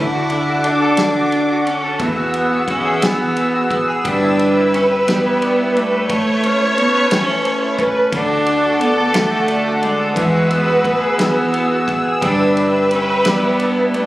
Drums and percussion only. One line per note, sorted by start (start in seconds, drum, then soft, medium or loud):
0.30 ride soft
0.64 ride soft
0.97 snare loud
0.97 ride medium
1.32 ride soft
1.67 ride soft
1.99 kick loud
1.99 ride medium
2.34 ride soft
2.68 kick medium
2.68 ride soft
3.02 snare loud
3.02 ride medium
3.37 ride soft
3.71 kick medium
3.71 ride soft
4.05 kick medium
4.05 ride medium
4.39 ride soft
4.74 ride soft
5.08 snare loud
5.08 ride medium
5.42 ride soft
5.77 ride soft
6.10 kick loud
6.10 ride medium
6.43 ride soft
6.78 ride soft
7.11 snare loud
7.11 ride medium
7.45 ride soft
7.79 kick medium
7.79 ride soft
8.12 kick loud
8.12 ride medium
8.46 ride soft
8.81 ride soft
9.14 snare loud
9.14 ride medium
9.48 ride soft
9.83 ride soft
10.16 kick loud
10.16 ride medium
10.51 ride soft
10.84 kick medium
10.84 ride soft
11.19 snare loud
11.19 ride medium
11.54 ride soft
11.88 kick medium
11.88 ride soft
12.22 kick loud
12.22 ride medium
12.57 ride soft
12.91 ride soft
13.25 snare loud
13.25 ride medium
13.60 ride soft
13.94 ride soft